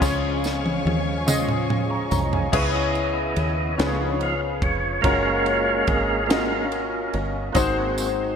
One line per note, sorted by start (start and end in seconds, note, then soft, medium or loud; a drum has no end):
0.00 0.81 C#2 loud
0.00 1.23 C#3 medium
0.00 2.09 F3 medium
0.00 2.10 G#3 soft
0.00 0.92 C#4 medium
0.00 2.10 C#4 soft
0.00 0.92 F4 medium
0.00 0.92 G#4 medium
0.00 2.50 C#5 medium
0.00 0.93 C#5 loud
0.00 2.51 F5 medium
0.00 2.50 G#5 medium
0.00 2.51 C#6 medium
0.00 kick loud
0.00 snare medium
0.00 crash medium
0.00 tambourine medium
0.44 snare medium
0.44 tambourine medium
0.66 high tom medium
0.85 2.07 D#2 medium
0.85 high tom medium
1.26 2.18 C#4 medium
1.26 2.18 F4 medium
1.26 2.18 G#4 medium
1.26 2.18 D#5 medium
1.26 mid tom medium
1.26 tambourine medium
1.49 mid tom medium
1.70 mid tom medium
1.90 2.10 A#5 soft
1.90 2.10 C#6 medium
2.10 2.50 C2 medium
2.10 2.49 F3 soft
2.10 2.49 G#3 soft
2.10 2.49 C#4 medium
2.10 2.31 A#5 medium
2.10 floor tom medium
2.10 tambourine soft
2.33 2.72 F5 medium
2.33 2.72 G#5 medium
2.33 floor tom medium
2.52 3.33 C#2 medium
2.52 3.74 C#3 medium
2.52 3.75 B3 soft
2.52 3.43 C#4 medium
2.52 3.43 E4 medium
2.52 3.74 E4 medium
2.52 3.44 G#4 medium
2.52 3.44 B4 medium
2.52 3.44 C#5 loud
2.52 3.75 D#5 medium
2.52 kick loud
2.52 crash loud
2.95 ride soft
3.36 3.75 D#2 medium
3.36 ride medium
3.78 4.63 C#2 medium
3.78 5.00 C#3 medium
3.78 4.34 F3 medium
3.78 4.35 B3 soft
3.78 4.69 C#4 medium
3.78 4.35 D#4 medium
3.78 4.69 F4 medium
3.78 4.69 G#4 medium
3.78 4.70 B4 medium
3.78 4.69 C#5 medium
3.78 snare loud
3.78 ride medium
4.21 4.41 F5 loud
4.21 ride soft
4.62 5.00 F1 loud
4.62 5.01 C#5 medium
4.62 kick medium
4.62 ride soft
5.01 5.83 F#1 loud
5.01 6.24 G#3 medium
5.01 6.24 A#3 soft
5.01 6.25 C#4 medium
5.01 5.94 C#4 medium
5.01 5.94 F4 medium
5.01 5.95 F#4 medium
5.01 6.24 A#4 medium
5.01 5.95 A#4 medium
5.01 5.89 C#5 medium
5.01 5.95 C#5 medium
5.01 6.24 F5 medium
5.01 kick loud
5.01 ride medium
5.46 ride soft
5.87 7.09 G#1 medium
5.87 6.30 G#4 medium
5.87 kick medium
5.87 ride medium
6.26 6.65 G#3 soft
6.26 6.66 A#3 soft
6.26 7.49 C#4 medium
6.26 7.20 C#4 medium
6.26 7.20 F4 medium
6.26 7.20 F#4 medium
6.26 7.18 A#4 medium
6.26 6.66 F5 medium
6.30 7.20 A#4 medium
6.30 7.21 D#5 medium
6.30 snare loud
6.30 ride medium
6.72 ride soft
7.14 7.52 G1 loud
7.14 ride soft
7.52 8.34 G#1 loud
7.52 8.36 G#2 medium
7.52 8.09 A#3 medium
7.52 8.09 C4 medium
7.52 8.36 C4 medium
7.52 8.36 D#4 medium
7.52 8.09 F#4 medium
7.52 8.36 F#4 medium
7.52 8.36 G#4 medium
7.52 8.36 C5 loud
7.52 kick loud
7.52 ride medium
7.52 tambourine medium
7.98 ride soft
7.98 tambourine medium